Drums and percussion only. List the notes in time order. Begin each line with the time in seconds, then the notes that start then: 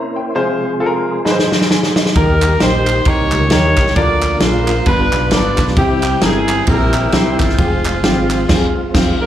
1.26 snare
1.39 snare
1.52 snare
1.61 snare
1.71 snare
1.83 snare
1.96 snare
2.06 snare
2.15 kick, ride
2.41 clap, ride
2.60 snare, ride
2.86 clap, ride
3.05 kick, ride
3.32 clap, ride
3.50 snare, ride
3.76 kick, snare, clap, ride
3.87 snare
3.96 kick, ride
4.21 clap, ride
4.40 snare, ride
4.67 clap, ride
4.86 kick, ride
5.12 clap, ride
5.31 snare, ride
5.57 kick, snare, clap, ride
5.67 snare
5.76 kick, ride
6.02 clap, ride
6.21 snare, ride
6.48 clap, ride
6.67 kick, ride
6.94 clap, ride
7.12 snare, ride
7.39 kick, snare, clap, ride
7.49 snare
7.58 kick, ride
7.84 clap, ride
8.04 snare, ride
8.30 clap, ride
8.49 kick, snare, crash
8.95 kick, snare, crash